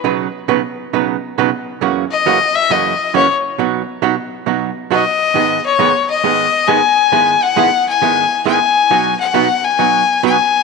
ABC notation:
X:1
M:4/4
L:1/8
Q:"Swing" 1/4=135
K:Bmix
V:1 name="Fiddle"
z8 | z d2 e d2 c z | z6 d2- | d c2 d3 g2- |
g f2 g3 g2- | g f2 g3 g2 |]
V:2 name="Hollow-body jazz guitar"
[B,,C,F,B,DB] z [B,,C,F,B,DB] z [B,,C,F,B,DB] z [B,,C,F,B,DB] z | [F,,C,E,^A,CF] z [F,,C,E,A,CF] z [F,,C,E,A,CF] z [F,,C,E,A,CF] z | [B,,F,B,DF] z [B,,F,B,DF] z [B,,F,B,DF] z [B,,F,B,DF] z | [G,,D,G,B,DG] z [G,,D,G,B,DG] z [G,,D,G,B,DG] z [G,,D,G,B,DG] z |
[G,,D,G,B,EG] z [G,,D,G,B,EG] z [G,,D,G,B,EG] z [G,,D,G,B,EG] z | [B,,F,B,DF] z [B,,F,B,DF] z [B,,F,B,DF] z [B,,F,B,DF] z |]